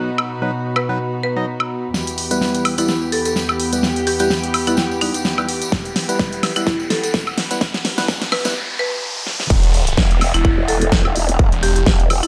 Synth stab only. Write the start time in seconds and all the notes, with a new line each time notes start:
Already playing: F#3 B3 D#4 B4
0.42 F#3 B3 D#4 B4
0.89 F#3 B3 D#4 B4
1.37 F#3 B3 D#4 D#5
2.31 G3 B3 E4 B4
2.78 G3 B3 E4 B4
3.73 G3 B3 E4 B4
4.20 G3 B3 E4 B4
4.67 G3 B3 E4 B4
5.01 G3 B3 E4 B4
5.38 G3 B3 E4 B4
6.09 G3 B3 E4 B4
6.56 G3 B3 E4 B4
7.51 G3 B3 E4 B4
7.98 G3 B3 E4 B4
8.45 G3 B3 E4 B4